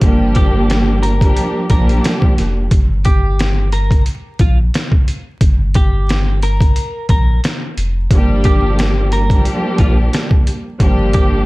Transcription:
0.01 1.33 G1 loud
0.01 1.11 F3 loud
0.01 1.11 G3 medium
0.01 1.11 A#3 loud
0.01 1.12 D4 medium
0.01 1.12 G4 loud
0.01 kick loud
0.01 closed hi-hat medium
0.35 0.99 G4 medium
0.35 kick loud
0.35 closed hi-hat medium
0.70 snare loud
0.70 closed hi-hat medium
1.02 1.66 A#4 medium
1.02 closed hi-hat medium
1.20 1.66 F3 medium
1.20 1.66 G3 medium
1.20 1.67 A#3 medium
1.20 1.67 D4 medium
1.20 1.67 G4 loud
1.20 kick medium
1.20 closed hi-hat medium
1.36 closed hi-hat medium
1.68 2.00 A#1 medium
1.68 2.63 F3 loud
1.68 2.63 G3 medium
1.68 2.64 A#3 medium
1.68 2.64 D4 medium
1.68 2.64 G4 loud
1.68 2.01 A#4 medium
1.68 kick loud
1.68 closed hi-hat medium
1.89 closed hi-hat medium
2.04 snare loud
2.04 closed hi-hat medium
2.22 kick medium
2.38 2.68 F1 medium
2.38 snare soft
2.38 closed hi-hat medium
2.71 4.02 G1 loud
2.71 kick loud
2.71 closed hi-hat medium
3.05 3.69 G4 medium
3.05 kick loud
3.05 closed hi-hat medium
3.39 snare loud
3.39 closed hi-hat medium
3.72 4.03 A#4 medium
3.72 closed hi-hat medium
3.91 kick medium
3.91 closed hi-hat medium
4.06 closed hi-hat medium
4.39 4.70 A#1 medium
4.39 4.57 F4 medium
4.39 kick loud
4.39 closed hi-hat medium
4.74 snare loud
4.74 closed hi-hat medium
4.92 kick medium
5.08 closed hi-hat medium
5.41 6.72 G1 loud
5.41 kick loud
5.41 closed hi-hat medium
5.74 6.39 G4 medium
5.74 kick loud
5.74 closed hi-hat medium
6.09 snare loud
6.09 closed hi-hat medium
6.42 7.06 A#4 medium
6.42 closed hi-hat medium
6.60 kick medium
6.60 closed hi-hat medium
6.76 closed hi-hat medium
7.09 7.39 A#1 medium
7.09 7.40 A#4 medium
7.09 kick loud
7.09 closed hi-hat medium
7.44 snare loud
7.44 closed hi-hat medium
7.77 8.07 F1 medium
7.77 closed hi-hat medium
8.11 9.42 G1 loud
8.11 9.20 F3 medium
8.11 9.21 G3 loud
8.11 9.21 A#3 medium
8.11 9.21 D4 medium
8.11 9.22 G4 loud
8.11 kick loud
8.11 closed hi-hat medium
8.44 9.08 G4 medium
8.44 kick loud
8.44 closed hi-hat medium
8.79 snare loud
8.79 closed hi-hat medium
9.12 9.43 A#4 medium
9.12 closed hi-hat medium
9.30 10.53 F3 loud
9.30 10.53 G3 medium
9.30 10.54 A#3 loud
9.30 10.54 D4 loud
9.30 10.54 G4 loud
9.30 kick medium
9.30 closed hi-hat medium
9.45 closed hi-hat medium
9.78 10.09 A#1 medium
9.78 9.97 F4 medium
9.78 kick loud
9.78 closed hi-hat medium
10.13 snare loud
10.13 closed hi-hat medium
10.31 kick medium
10.47 closed hi-hat medium
10.79 11.46 G1 loud
10.79 11.46 F3 loud
10.79 11.46 G3 medium
10.79 11.46 A#3 loud
10.79 11.46 D4 medium
10.79 11.46 G4 loud
10.79 kick loud
10.79 closed hi-hat medium
11.13 11.46 G4 medium
11.13 kick loud
11.13 closed hi-hat medium

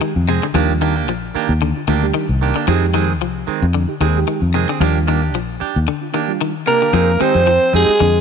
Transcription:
0.00 0.25 D#3 medium
0.00 0.11 G#3 medium
0.00 0.12 D#4 medium
0.00 0.12 G4 medium
0.16 0.39 F2 medium
0.28 0.41 C3 medium
0.28 0.45 G#3 medium
0.28 0.45 C4 medium
0.28 0.45 G#4 medium
0.43 0.54 D3 medium
0.54 1.08 D#2 medium
0.54 0.72 D#3 medium
0.54 0.78 F3 medium
0.54 0.91 G3 medium
0.54 0.72 A#3 medium
0.54 0.72 D4 medium
0.54 0.92 D4 medium
0.54 0.92 F4 medium
0.54 0.72 G4 medium
0.81 0.96 D#3 medium
0.81 1.05 D#3 medium
0.81 0.96 A#3 medium
0.81 0.95 D4 medium
0.81 0.94 G4 medium
0.96 1.11 A#3 soft
0.96 1.11 D4 soft
0.96 1.11 G4 medium
1.08 1.30 A#1 medium
1.08 1.32 F3 medium
1.35 1.52 D#3 medium
1.35 1.52 A#3 medium
1.35 1.52 D4 medium
1.35 1.52 G4 medium
1.35 muted fingered electric bass stroke soft
1.49 1.72 D#2 medium
1.62 1.85 D3 medium
1.76 1.80 D4 medium
1.76 1.81 F4 medium
1.88 2.10 D2 medium
1.88 2.11 D#3 medium
1.88 2.05 D#3 medium
1.88 2.05 A#3 medium
1.88 1.93 D4 medium
1.88 2.06 D4 medium
1.88 1.94 F4 loud
1.88 2.06 G4 medium
2.02 2.25 G3 medium
2.02 2.25 D4 medium
2.02 2.25 G4 medium
2.14 2.38 D#3 medium
2.29 2.52 C2 medium
2.41 2.56 D#3 medium
2.41 2.56 A#3 medium
2.41 2.55 D4 medium
2.41 2.54 G4 medium
2.56 2.66 D3 medium
2.56 2.67 A#3 soft
2.56 2.67 D4 medium
2.56 2.68 G4 medium
2.67 3.21 F2 medium
2.67 2.85 D#3 medium
2.67 2.91 F3 medium
2.67 3.05 G#3 medium
2.67 2.85 G#3 medium
2.67 2.85 C4 medium
2.67 3.05 D#4 medium
2.67 3.06 G4 medium
2.67 2.85 G#4 medium
2.94 3.11 D#3 medium
2.94 3.18 D#3 medium
2.94 3.12 G#3 medium
2.94 3.12 C4 medium
2.94 3.12 G#4 medium
3.21 3.44 C2 medium
3.21 3.45 F3 medium
3.47 3.65 D#3 medium
3.47 3.65 G#3 medium
3.47 3.65 C4 medium
3.47 muted fingered electric bass stroke soft
3.47 muted clean electric guitar stroke medium
3.62 3.85 F2 loud
3.74 3.98 D3 medium
3.88 3.93 D#4 medium
3.88 3.93 G4 medium
4.00 4.23 D#2 medium
4.00 4.18 D#3 medium
4.00 4.25 D#3 medium
4.00 4.18 G#3 medium
4.00 4.19 C4 medium
4.00 4.06 D#4 medium
4.00 4.06 G4 medium
4.00 4.19 G#4 medium
4.16 4.38 G#3 medium
4.16 4.39 D#4 medium
4.16 4.39 G4 medium
4.28 4.51 D#3 medium
4.42 4.65 F2 medium
4.54 4.67 C3 medium
4.54 4.69 D#3 medium
4.54 4.69 G#3 medium
4.54 4.68 C4 medium
4.54 4.68 G#4 medium
4.69 4.80 D3 medium
4.69 4.81 C4 soft
4.69 4.81 G#4 medium
4.69 muted clean electric guitar stroke soft
4.80 5.35 D#2 loud
4.80 5.05 F3 medium
4.80 5.18 G3 medium
4.80 4.98 A#3 medium
4.80 4.98 D4 medium
4.80 5.18 D4 medium
4.80 5.19 F4 medium
4.80 4.98 G4 medium
5.07 5.31 D#3 medium
5.07 5.22 A#3 medium
5.07 5.22 D4 medium
5.07 5.21 G4 medium
5.22 5.38 D4 soft
5.22 5.37 G4 soft
5.35 5.57 A#1 medium
5.35 5.58 F3 medium
5.60 5.78 D4 medium
5.60 5.78 G4 medium
5.60 muted clean electric guitar stroke medium
5.60 muted fingered electric bass stroke soft
5.76 5.86 D#2 medium
5.88 6.11 D3 medium
6.01 6.06 D4 medium
6.01 6.07 F4 medium
6.13 6.38 D#3 medium
6.13 6.31 A#3 medium
6.13 6.18 D4 medium
6.13 6.31 D4 medium
6.13 6.19 G4 medium
6.13 6.31 G4 medium
6.28 6.51 G3 medium
6.28 6.51 D4 medium
6.28 6.51 F4 medium
6.41 6.64 D#3 medium
6.66 6.80 C3 medium
6.66 6.82 A#3 medium
6.66 7.22 A#3 medium
6.66 6.80 D4 medium
6.66 6.79 G4 medium
6.66 7.23 A#4 medium
6.81 6.93 D3 medium
6.81 6.93 D4 soft
6.81 6.93 G4 medium
6.93 7.16 F2 loud
6.93 7.17 F3 medium
6.93 7.11 C4 medium
6.93 7.11 D#4 medium
6.93 7.11 G#4 loud
7.19 7.44 D#3 medium
7.19 7.39 G#3 medium
7.19 7.35 C4 medium
7.19 7.74 C4 loud
7.19 7.39 D#4 medium
7.19 7.34 D#4 medium
7.19 7.40 G4 loud
7.19 7.33 G#4 medium
7.19 7.74 C5 loud
7.19 muted fingered electric bass stroke soft
7.34 7.58 F2 medium
7.34 7.50 D#4 soft
7.34 7.49 G#4 soft
7.47 7.70 F3 medium
7.73 7.86 F2 medium
7.73 7.93 G#3 medium
7.73 8.21 G#3 medium
7.73 7.90 C4 medium
7.73 7.91 D#4 medium
7.73 7.93 D#4 medium
7.73 7.93 G4 medium
7.73 7.91 G#4 medium
7.73 8.21 G#4 loud
7.88 muted fingered electric bass stroke soft
8.00 8.21 F2 medium
8.00 8.21 D3 medium

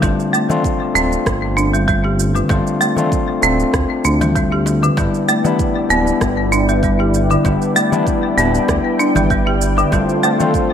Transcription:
0.01 0.14 G1 loud
0.01 0.18 G3 medium
0.01 0.46 A3 medium
0.01 0.46 C4 medium
0.01 0.46 D4 medium
0.01 0.47 F4 medium
0.01 kick loud
0.01 darbuka tek medium
0.01 shaker soft
0.20 shaker soft
0.33 0.49 A3 medium
0.33 shaker medium
0.49 0.92 A3 medium
0.49 0.92 C4 medium
0.49 0.92 D4 medium
0.49 0.93 F4 medium
0.49 darbuka dum medium
0.49 shaker soft
0.64 kick loud
0.64 shaker soft
0.94 1.17 D1 medium
0.94 2.46 A3 medium
0.94 2.46 C4 medium
0.94 1.56 C4 loud
0.94 2.47 D4 medium
0.94 shaker medium
0.98 2.48 F4 medium
1.11 darbuka ka soft
1.11 shaker soft
1.26 2.43 G1 loud
1.26 kick medium
1.26 cross-stick medium
1.26 shaker soft
1.57 1.73 D4 medium
1.57 shaker medium
1.73 1.87 G3 medium
1.73 shaker soft
1.88 1.98 G3 medium
1.88 kick loud
1.88 shaker soft
2.04 2.13 G4 medium
2.20 shaker medium
2.35 2.49 D3 medium
2.35 darbuka ka soft
2.35 shaker soft
2.49 2.61 G1 loud
2.49 2.66 G3 medium
2.49 2.93 A3 medium
2.49 2.94 C4 medium
2.49 2.94 D4 medium
2.49 2.94 F4 medium
2.49 kick loud
2.49 darbuka tek medium
2.49 shaker soft
2.67 shaker soft
2.81 2.97 A3 loud
2.81 shaker medium
2.96 3.39 A3 medium
2.96 3.39 C4 medium
2.96 3.40 D4 medium
2.96 3.40 F4 medium
2.96 darbuka dum medium
2.96 shaker soft
3.12 kick loud
3.12 shaker soft
3.41 3.64 D1 loud
3.41 4.93 A3 medium
3.41 4.94 C4 medium
3.41 4.03 C4 loud
3.41 4.94 D4 medium
3.41 4.95 F4 medium
3.41 shaker medium
3.60 shaker soft
3.74 3.85 D2 medium
3.74 kick medium
3.74 cross-stick medium
3.74 shaker soft
4.05 4.90 D2 medium
4.05 4.20 D4 medium
4.05 shaker medium
4.21 4.34 G3 medium
4.21 darbuka ka medium
4.21 darbuka dum medium
4.21 shaker soft
4.36 4.45 G3 medium
4.36 kick loud
4.36 shaker soft
4.52 4.61 G4 medium
4.66 darbuka tek medium
4.66 shaker medium
4.83 4.96 D3 medium
4.83 darbuka ka soft
4.83 shaker soft
4.97 5.09 G1 medium
4.97 5.41 G3 medium
4.97 5.13 G3 medium
4.97 5.41 B3 medium
4.97 5.41 D4 medium
4.97 9.89 E4 medium
4.97 5.42 E4 medium
4.97 9.89 B4 medium
4.97 9.88 D5 medium
4.97 10.73 G5 medium
4.97 kick loud
4.97 darbuka tek medium
4.97 shaker soft
5.14 shaker soft
5.29 5.44 A3 loud
5.29 shaker medium
5.44 5.87 G3 medium
5.44 5.87 B3 medium
5.44 5.87 D4 medium
5.44 5.88 E4 medium
5.44 darbuka dum medium
5.44 shaker soft
5.59 kick loud
5.59 shaker soft
5.89 6.12 D1 medium
5.89 7.41 G3 medium
5.89 7.41 B3 medium
5.89 6.51 B3 loud
5.89 7.42 D4 medium
5.89 7.43 E4 medium
5.89 shaker medium
6.06 darbuka ka soft
6.06 shaker soft
6.21 7.37 G1 loud
6.21 kick medium
6.21 cross-stick medium
6.21 shaker soft
6.52 6.68 D4 medium
6.52 shaker medium
6.69 6.82 G3 medium
6.69 shaker soft
6.83 6.93 G3 medium
6.83 kick loud
6.83 shaker soft
7.00 7.08 G4 medium
7.14 shaker medium
7.30 7.44 D3 medium
7.30 darbuka ka soft
7.30 shaker soft
7.44 7.56 G1 loud
7.44 7.88 G3 medium
7.44 7.61 G3 medium
7.44 7.88 B3 medium
7.44 7.89 D4 medium
7.44 7.89 E4 medium
7.44 kick loud
7.44 darbuka tek medium
7.44 shaker soft
7.62 shaker soft
7.76 7.92 A3 loud
7.76 shaker medium
7.91 8.34 G3 medium
7.91 8.34 B3 medium
7.91 8.34 D4 medium
7.91 8.35 E4 medium
7.91 darbuka dum medium
7.91 shaker soft
8.07 kick loud
8.07 shaker soft
8.35 8.59 D1 loud
8.35 9.88 G3 medium
8.35 9.88 B3 medium
8.35 8.98 B3 loud
8.35 9.89 D4 medium
8.35 shaker medium
8.40 9.90 E4 medium
8.55 shaker soft
8.68 8.80 D2 loud
8.68 kick medium
8.68 cross-stick medium
8.68 shaker soft
8.99 9.15 D4 medium
8.99 shaker medium
9.15 9.85 G1 medium
9.15 9.29 G3 medium
9.15 darbuka ka medium
9.15 darbuka dum medium
9.15 shaker soft
9.30 9.40 G3 medium
9.30 kick medium
9.30 shaker soft
9.47 9.55 G4 medium
9.62 shaker medium
9.77 9.91 D3 medium
9.77 darbuka ka soft
9.77 shaker soft
9.91 10.03 G1 medium
9.91 10.08 G3 medium
9.91 10.35 A3 medium
9.91 10.36 C4 medium
9.91 10.36 D4 medium
9.91 10.73 F4 medium
9.91 10.36 F4 medium
9.91 10.73 A4 medium
9.91 10.73 C5 medium
9.91 kick medium
9.91 darbuka tek medium
9.91 shaker soft
10.09 shaker soft
10.23 10.39 A3 loud
10.23 shaker medium
10.39 10.73 A3 medium
10.39 10.73 C4 medium
10.39 10.73 D4 medium
10.39 10.73 F4 medium
10.39 darbuka dum medium
10.39 shaker soft
10.54 kick loud
10.54 shaker soft

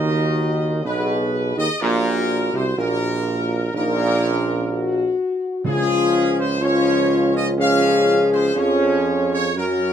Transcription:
0.00 0.80 D#2 loud
0.00 0.81 D#3 loud
0.00 0.81 F#4 medium
0.00 0.80 D#5 loud
0.84 1.53 B1 loud
0.84 1.57 B2 loud
0.84 1.78 G#4 medium
0.84 1.53 B4 loud
1.57 1.68 D#2 loud
1.57 1.68 D#3 medium
1.57 1.79 D#5 loud
1.80 2.50 A#1 loud
1.80 2.50 A#2 loud
1.80 3.71 F#4 loud
1.80 2.53 A#4 loud
2.53 2.76 C2 medium
2.53 2.65 C3 medium
2.53 2.78 C5 loud
2.78 3.70 A#1 loud
2.78 3.70 A#2 medium
2.78 3.70 A#4 loud
3.74 5.13 A#1 loud
3.74 5.15 A#2 loud
3.74 4.19 D#4 medium
3.74 5.13 A#4 loud
4.22 4.69 C#4 medium
4.70 5.61 F#4 loud
5.64 8.52 C#2 loud
5.64 7.05 C#3 loud
5.64 6.57 F3 loud
5.64 6.57 C#4 loud
5.64 6.45 F4 loud
5.64 6.33 G#4 loud
6.38 6.62 C5 loud
6.61 7.54 F3 loud
6.61 7.54 C#4 loud
6.61 7.55 F4 loud
6.61 7.35 C#5 loud
7.35 7.46 D#5 loud
7.58 8.52 F3 medium
7.58 8.52 C#4 loud
7.58 9.52 G#4 loud
7.58 8.28 F5 loud
8.32 8.56 C5 loud
8.56 9.57 F2 medium
8.56 9.52 F3 loud
8.56 9.52 C#4 loud
8.56 9.30 C#5 loud
9.31 9.55 C#5 loud
9.55 9.93 F#2 loud
9.55 9.93 F#3 loud
9.55 9.93 C#4 loud
9.55 9.93 F#4 loud
9.55 9.93 A#4 loud

